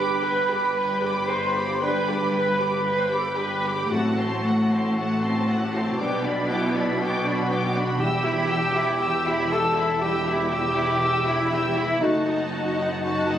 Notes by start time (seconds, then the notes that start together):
Already playing: G1 G2 G3 D4 G4 B4 B5 D6
0.22 B4 G5 B5
0.50 G4 B5 D6
0.76 B4 G5 B5
1.02 G4 B5 D6
1.28 B4 C5 G5 B5 C6
1.54 G4 B5 D6
1.80 G3 D4 B4 G5 B5
2.06 G4 B5 D6
2.31 B4 G5 B5
2.57 G4 B5 D6
2.83 B4 G5 B5
2.98 C5
3.09 G4 B4 B5 D6
3.18 A4
3.27 B4
3.35 G4 B4 G5 B5
3.62 B5
3.66 G4 D6
3.89 A1 A2 F#3 A3 C4 F#4 F#5 A5
4.17 C4 A5 C6
4.44 A3 F#5 A5
4.71 C4 A5 C6
4.96 A3 F#5 A5
5.22 C4 A5 C6
5.46 F#5 A5
5.51 A3
5.63 G4
5.72 C4 F#4 A5 C6
5.81 E4
5.89 F#4
5.98 B1 B2 G3 B3 D4 G5 D6
6.24 D4 D5 B5
6.49 B3 E4 E5 G5 D6
6.74 D4 D5 B5
6.99 B3 F#4 F#5 G5 D6
7.25 D4 D5 B5
7.49 B3 G5 D6
7.72 D4 D5
7.78 B5
7.97 E1 E2 G3 E4 G4 G5 E6
8.21 E4 E5 B5
8.48 G4 G5 E6
8.71 E4 E5
8.76 B5
8.97 G4 G5 E6
9.25 E4 E5 B5
9.49 G4 A4 G5 A5 E6
9.74 E4 E5 B5
10.00 G3 E4 G4 G5 E6
10.25 E4 E5 B5
10.51 G4 G5 E6
10.74 E4 E5 B5
11.01 G4 G5 E6
11.25 E4 E5 B5
11.50 E4 G4 E5 G5 E6
11.74 E4 E5 B5
12.01 F#1 F#2 A3 D#4 F#4 D#5 F#5 A5
12.27 D#4 F#5 A5
12.51 F#4 F#5 A5
12.77 D#4 F#5 A5
13.02 F#4 F#5 A5
13.28 D#4 F#5 A5